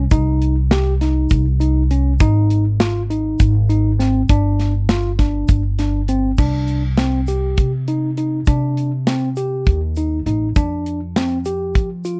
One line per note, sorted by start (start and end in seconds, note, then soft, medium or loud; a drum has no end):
0.11 1.27 C2 medium
0.11 0.55 D#4 medium
0.11 kick loud
0.11 closed hi-hat medium
0.11 shaker medium
0.42 closed hi-hat medium
0.71 0.93 G4 medium
0.71 snare loud
0.71 closed hi-hat medium
1.01 1.45 D#4 medium
1.01 snare soft
1.01 closed hi-hat medium
1.30 2.16 C2 medium
1.30 kick loud
1.30 closed hi-hat medium
1.30 shaker medium
1.60 1.82 D#4 medium
1.60 closed hi-hat medium
1.60 shaker soft
1.91 2.12 C#4 medium
1.91 closed hi-hat medium
2.20 3.36 G#1 medium
2.20 2.64 D#4 medium
2.20 kick loud
2.20 closed hi-hat medium
2.20 shaker medium
2.50 closed hi-hat medium
2.80 3.02 F4 medium
2.80 snare loud
2.80 closed hi-hat medium
3.10 3.53 D#4 medium
3.10 closed hi-hat medium
3.40 4.25 G#1 loud
3.40 kick loud
3.40 closed hi-hat medium
3.40 shaker medium
3.69 3.91 D#4 medium
3.69 closed hi-hat medium
3.69 shaker soft
3.99 4.21 C4 medium
3.99 snare soft
3.99 closed hi-hat medium
4.29 5.45 G1 medium
4.29 4.73 D4 medium
4.29 kick loud
4.29 closed hi-hat medium
4.29 shaker medium
4.59 snare soft
4.59 closed hi-hat medium
4.89 5.11 F4 medium
4.89 snare loud
4.89 closed hi-hat medium
4.89 shaker soft
5.19 5.62 D4 medium
5.19 kick medium
5.19 snare soft
5.19 closed hi-hat medium
5.48 6.34 G1 medium
5.48 kick medium
5.48 closed hi-hat medium
5.48 shaker medium
5.79 6.00 D4 medium
5.79 snare soft
5.79 closed hi-hat medium
6.08 6.30 C4 medium
6.08 closed hi-hat medium
6.08 shaker soft
6.38 7.54 C2 medium
6.38 6.82 D4 medium
6.38 kick loud
6.38 crash medium
6.38 shaker soft
6.68 closed hi-hat medium
6.98 7.20 C4 medium
6.98 snare loud
6.98 closed hi-hat medium
7.27 7.71 G4 medium
7.27 closed hi-hat medium
7.27 shaker soft
7.57 8.43 C3 medium
7.57 kick loud
7.57 closed hi-hat medium
7.57 shaker soft
7.88 8.09 D#4 medium
7.88 closed hi-hat medium
8.17 8.39 D#4 medium
8.17 closed hi-hat medium
8.46 9.63 C3 medium
8.46 8.91 D4 medium
8.46 kick loud
8.46 closed hi-hat medium
8.46 shaker medium
8.77 closed hi-hat medium
9.07 9.29 C4 medium
9.07 snare medium
9.07 closed hi-hat medium
9.36 9.80 G4 medium
9.36 closed hi-hat medium
9.36 shaker soft
9.66 10.22 D#2 medium
9.66 kick loud
9.66 closed hi-hat medium
9.66 shaker soft
9.96 10.18 D#4 medium
9.96 closed hi-hat medium
9.96 shaker soft
10.26 10.53 A1 medium
10.26 10.48 D#4 medium
10.26 closed hi-hat soft
10.56 11.71 F2 medium
10.56 10.99 D4 medium
10.56 kick loud
10.56 closed hi-hat medium
10.56 shaker medium
10.86 closed hi-hat medium
11.16 11.38 C4 medium
11.16 snare loud
11.16 closed hi-hat medium
11.45 11.89 G4 medium
11.45 closed hi-hat medium
11.45 shaker soft
11.75 12.20 F3 medium
11.75 kick loud
11.75 closed hi-hat medium
11.75 shaker soft
12.05 12.20 F4 medium
12.05 closed hi-hat medium
12.05 shaker soft